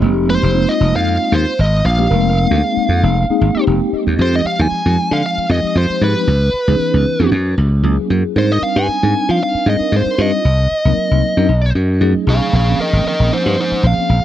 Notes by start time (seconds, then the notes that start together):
0.01 F1 G#3 A#3 C4 D#4 G4
0.30 C5
0.43 F1
0.53 G#3 A#3 C4 D#4 F4
0.69 D#5
0.80 F1
0.95 F2 F5
1.32 D#2 C5
1.59 G#1 D#5
1.84 A#1 F5
1.98 G#3 A#3 C4 D#4 G4
2.09 F1 G#3 A#3 C4 D#4 A#4
2.51 D2
2.63 G#3 A#3 C4 D#4 G#4
2.77 muted slap bass stroke
2.89 F2
3.03 F1
3.29 G#3 A#3 C4 D#4 G#4, muted slap bass stroke
3.41 G#1
3.55 G#3 A#3 C4 D#4 G4
3.67 F1 G5
3.93 D#5, muted slap bass stroke
4.07 D#2
4.19 F2 F3 G#3 C4 D#4 G4 C5
4.36 D#5
4.45 F5, muted slap bass stroke
4.59 D#2 G#5
4.71 muted slap bass stroke
4.85 F2 F3 G#3 C4 D#4 G4
5.11 D3 F5
5.26 F5
5.38 muted slap bass stroke
5.49 F2 F3 G#3 C4 D#4 G4 D#5
5.64 muted slap bass stroke
5.75 F2 C5
5.90 muted slap bass stroke
6.01 G#2 F3 G#3 C4 D#4 G4 B4
6.27 C#2
6.67 C#2 E3 B3 C#4 D#4 G#4
6.94 C#2
7.19 F2 E3 B3 C#4 D#4 B4
7.31 F#2
7.58 C#2
7.83 C#2 F#3 A#3 C#4 E4 G#4
7.98 muted slap bass stroke
8.10 F#2
8.35 G#2 G3 C4 D4 D#4 A#4 C5
8.52 D#5
8.62 F5, muted slap bass stroke
8.76 G2 G#5
8.88 muted slap bass stroke
9.02 G#2 G3 C4 D4 D#4 A#4
9.29 F3 F5
9.43 F5
9.55 muted slap bass stroke
9.66 G#2 G3 C4 D4 D#4 A#4 D#5
9.80 muted slap bass stroke
9.92 G#2
9.96 C5
10.06 muted slap bass stroke
10.18 G2 G3 C4 D4 D#4 F4 D#5
10.45 C2
10.85 C2 F#3 A#3 C4 D#4 A#4
11.11 C2
11.37 F#2 F#3 C4 D4 D#4 A#4
11.49 B1
11.75 F#2
12.00 F#2 F#3 A3 C#4 D#4 G#4
12.16 muted slap bass stroke
12.27 B1 G#4 F5
12.53 A#1 F3 A#3 C4 C#4 G#4 F5
12.81 A#4 D#5
12.93 G#1
13.06 A#4 D#5, muted slap bass stroke
13.20 A#1 F3 A#3 C4 C#4 G#4
13.33 D#4 C5
13.46 G2
13.60 D#4 C5
13.72 muted slap bass stroke
13.83 A#1 F3 A#3 C4 C#4 G#4 F5
14.09 A#1